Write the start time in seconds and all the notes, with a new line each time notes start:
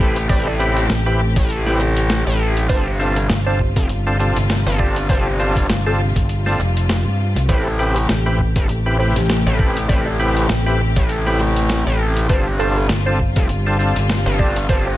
Already playing: A1 C3 A3 G4
0.00 C4 E4 G4 B4
0.16 closed hi-hat
0.29 A1 C4 E4 G4 B4 D5, kick, closed hi-hat
0.47 D5
0.59 C4 E4 G4 B4, shaker
0.77 closed hi-hat
0.89 A1, snare, closed hi-hat
1.06 C4 E4 G4 B4
1.36 A1, kick, closed hi-hat
1.50 closed hi-hat
1.66 C4 E4 G4 B4, snare
1.80 snare, shaker
1.97 closed hi-hat
2.10 snare, closed hi-hat
2.27 A1
2.57 closed hi-hat
2.69 G1 C3 G3 C4 D4 F4 A4 C5, kick, closed hi-hat
2.99 C4 D4 F4 A4, shaker
3.16 A4, closed hi-hat
3.30 G1, snare
3.46 C4 D4 F4 A4 C5
3.59 kick
3.76 F1, kick, closed hi-hat
3.89 G1, closed hi-hat
4.07 C4 D4 F4 A4
4.19 C4 D4 F4 A4, shaker
4.36 G1, closed hi-hat
4.50 snare, closed hi-hat
4.67 G1
4.79 C4 D4 F4 A4 D5, kick
4.96 closed hi-hat
5.09 G1 C4 D4 F4 A4 C5, kick, closed hi-hat
5.26 C5
5.40 C4 D4 F4 A4, shaker
5.56 kick, closed hi-hat
5.69 G1, snare, closed hi-hat
5.86 C4 D4 F4 A4
6.16 G1, kick, closed hi-hat
6.29 closed hi-hat
6.46 C4 D4 F4 A4, snare
6.59 F1, snare, shaker
6.77 closed hi-hat
6.89 snare, closed hi-hat
7.05 G2
7.36 C2, snare, closed hi-hat
7.49 A1 C3 A3 C4 E4 G4 B4 C5, kick, closed hi-hat
7.79 C4 E4 G4 A4 B4, shaker
7.95 A4, closed hi-hat
8.09 A1, snare, closed hi-hat
8.26 C4 E4 G4 B4
8.39 kick
8.56 G1, kick, closed hi-hat
8.69 A1, closed hi-hat
8.86 C4 E4 G4 B4
8.99 C4 E4 G4 B4 C5, shaker
9.05 shaker
9.09 shaker
9.16 A1 C5, closed hi-hat, shaker
9.19 shaker
9.25 shaker
9.30 snare, closed hi-hat
9.47 A1
9.59 C4 E4 G4 B4, kick
9.77 closed hi-hat
9.89 A1 C4 E4 G4 B4 D5, kick, closed hi-hat
10.06 D5
10.19 C4 E4 G4 B4, shaker
10.37 closed hi-hat
10.49 A1, snare, closed hi-hat
10.66 C4 E4 G4 B4
10.96 A1, kick, closed hi-hat
11.09 closed hi-hat
11.26 C4 E4 G4 B4, snare
11.39 snare, shaker
11.56 closed hi-hat
11.70 snare, closed hi-hat
11.87 A1
12.17 closed hi-hat
12.29 G1 G3 C4 D4 F4 A4 C5, kick, closed hi-hat
12.59 C4 D4 F4 A4, shaker
12.77 A4
12.89 G1, snare, closed hi-hat
13.06 C4 D4 F4 A4 C5
13.19 kick
13.36 F1, kick, closed hi-hat
13.49 G1, closed hi-hat
13.66 C4 D4 F4 A4
13.79 C4 D4 F4 A4, shaker
13.96 G1, closed hi-hat
14.10 snare, closed hi-hat
14.26 G1
14.39 C4 D4 F4 A4 D5, kick
14.56 closed hi-hat
14.69 G1 C4 D4 F4 A4 C5, kick, closed hi-hat
14.87 C5